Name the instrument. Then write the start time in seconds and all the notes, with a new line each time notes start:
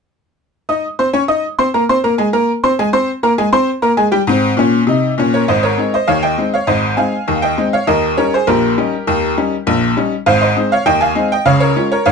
honky-tonk piano
0.69 D#4 D#5 D#6
0.99 C4 C5 C6
1.13 C#4 C#5 C#6
1.28 D#4 D#5 D#6
1.58 C4 C5 C6
1.74 A#3 A#4 A#5
1.89 C4 C5 C6
2.04 A#3 A#4 A#5
2.18 G#3 G#4 G#5
2.33 A#3 A#4 A#5
2.63 C4 C5 C6
2.79 G#3 G#4 G#5
2.93 C4 C5 C6
3.23 A#3 A#4 A#5
3.38 G#3 G#4 G#5
3.52 C4 C5 C6
3.82 A#3 A#4 A#5
3.97 G#3 G#4 G#5
4.12 G3 G4 G5
4.27 G#2 C4
4.57 A#2 C#4
4.87 C3 D#4
5.18 A#2 C#4
5.34 A#4 C#5
5.48 G#1 G#2 C5 D#5
5.63 A#4 C#5
5.78 G#3 C4 D#4
5.94 C5 D#5
6.07 D#2 D#3 C#5 F5
6.23 D#5 G5
6.38 G#3 C4 D#4
6.54 C#5 F5
6.67 G#1 G#2 C5 D#5
6.97 G#3 C4 D#4 F5 G#5
7.28 D#2 D#3
7.42 D#5 G5
7.58 G#3 C4 D#4
7.73 C#5 F5
7.87 D#2 D#3 A#4 D#5
8.18 G3 C#4 D#4 A#4 C#5
8.34 G#4 C5
8.47 A#1 A#2 G4 A#4
8.78 G3 C#4 D#4
9.07 D#2 D#3
9.37 G3 C#4 D#4
9.67 A#1 A#2
9.96 G3 C#4 D#4
10.26 G#1 G#2 C5 F5
10.41 C5 D#5
10.56 G#3 C4 D#4
10.72 C#5 F5
10.86 D#2 D#3 D#5 G5
11.01 F5 G#5
11.15 G#3 C4 D#4
11.32 D#5 G5
11.46 C#2 C#3 C#5 F5
11.60 A#4 C#5
11.76 G#3 C#4 F4
11.92 A#4 C#5
12.06 G#1 G#2 C#5 F5